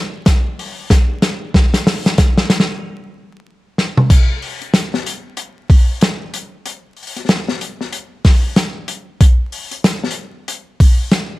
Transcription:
0.26 kick medium
0.26 snare medium
0.26 closed hi-hat medium
0.59 open hi-hat medium
0.90 kick loud
0.90 snare medium
0.90 closed hi-hat medium
1.22 snare medium
1.22 closed hi-hat medium
1.54 kick loud
1.54 snare medium
1.74 snare medium
1.74 closed hi-hat medium
1.87 snare loud
1.87 open hi-hat medium
2.06 snare medium
2.06 closed hi-hat medium
2.18 kick medium
2.18 snare medium
2.18 closed hi-hat medium
2.38 snare medium
2.50 snare loud
2.50 closed hi-hat medium
2.60 snare medium
3.78 snare medium
3.97 mid tom medium
4.10 kick loud
4.10 closed hi-hat medium
4.10 crash loud
4.42 open hi-hat medium
4.62 closed hi-hat medium
4.74 snare loud
4.74 closed hi-hat medium
4.94 snare medium
5.06 closed hi-hat medium
5.37 closed hi-hat medium
5.70 kick loud
5.70 open hi-hat medium
6.01 snare loud
6.01 closed hi-hat medium
6.34 closed hi-hat medium
6.66 closed hi-hat medium
6.97 open hi-hat soft
7.03 open hi-hat soft
7.07 open hi-hat medium
7.16 snare soft
7.16 closed hi-hat medium
7.25 snare soft
7.25 closed hi-hat medium
7.29 snare loud
7.35 snare soft
7.48 snare medium
7.61 closed hi-hat medium
7.81 snare soft
7.93 closed hi-hat medium
8.25 kick loud
8.25 snare medium
8.25 open hi-hat medium
8.56 snare loud
8.56 closed hi-hat medium
8.88 closed hi-hat medium
9.21 kick loud
9.21 closed hi-hat medium
9.52 open hi-hat medium
9.72 closed hi-hat medium
9.84 snare loud
9.84 closed hi-hat medium
10.04 snare soft
10.11 closed hi-hat medium
10.48 closed hi-hat medium
10.80 kick loud
10.80 open hi-hat medium
11.12 snare loud
11.12 closed hi-hat medium

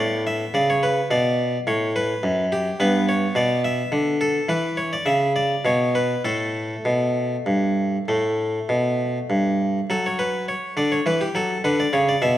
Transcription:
0.00 0.43 A2 soft
0.00 2.76 B3 soft
0.00 0.22 D5 medium
0.27 0.55 E5 medium
0.54 0.99 C#3 soft
0.54 0.69 D5 medium
0.70 0.83 C#5 medium
0.83 1.06 B4 medium
1.11 1.56 B2 medium
1.11 1.59 D5 medium
1.67 2.12 A2 medium
1.67 1.91 C#5 medium
1.96 2.44 B4 medium
2.23 2.68 F#2 medium
2.52 2.80 G4 medium
2.80 3.25 G2 medium
2.80 6.22 B3 soft
2.80 3.04 B4 medium
3.09 3.36 C#5 medium
3.35 3.81 B2 medium
3.35 3.60 D5 medium
3.65 4.21 E5 medium
3.92 4.38 D3 medium
4.21 4.49 A4 medium
4.49 4.95 E3 medium
4.49 4.78 B4 medium
4.77 4.92 C#5 medium
4.93 5.07 D5 medium
5.06 5.53 C#3 medium
5.06 5.31 E5 medium
5.36 5.65 D5 medium
5.65 6.13 B2 medium
5.65 5.96 C#5 medium
5.95 6.21 B4 medium
6.25 6.73 A2 medium
6.25 8.05 A3 soft
6.25 9.00 A4 medium
6.85 7.35 B2 soft
7.46 7.96 G2 soft
8.08 8.58 A2 soft
8.08 9.86 A3 soft
8.69 9.17 B2 soft
9.30 9.78 G2 soft
9.90 10.53 F#3 medium
9.90 10.05 A4 medium
10.06 10.20 C#5 medium
10.19 10.44 B4 medium
10.48 10.73 C#5 medium
10.77 10.98 D3 medium
10.77 10.92 D5 medium
10.92 11.06 C#5 medium
11.06 11.27 E3 medium
11.06 11.21 B4 medium
11.21 11.35 G4 medium
11.35 11.56 F#3 medium
11.35 11.60 A4 medium
11.64 11.85 D3 medium
11.64 11.79 B4 medium
11.80 11.94 D5 medium
11.93 12.14 C#3 medium
11.93 12.08 C#5 medium
12.09 12.22 D5 medium
12.22 12.38 B2 medium
12.22 12.38 E5 medium

